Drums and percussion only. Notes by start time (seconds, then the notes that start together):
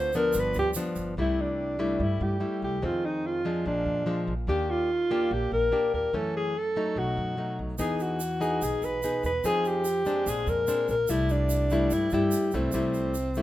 0.13 shaker
0.33 shaker
0.54 shaker
0.74 shaker
0.95 shaker
7.78 shaker
7.99 shaker
8.20 shaker
8.42 shaker
8.62 shaker
8.82 shaker
9.02 shaker
9.24 shaker
9.44 shaker
9.65 shaker
9.85 shaker
10.05 shaker
10.27 shaker
10.47 shaker
10.67 shaker
10.88 shaker
11.08 shaker
11.29 shaker
11.49 shaker
11.70 shaker
11.90 shaker
12.10 shaker
12.31 shaker
12.51 shaker
12.72 shaker
12.94 shaker
13.14 shaker
13.35 shaker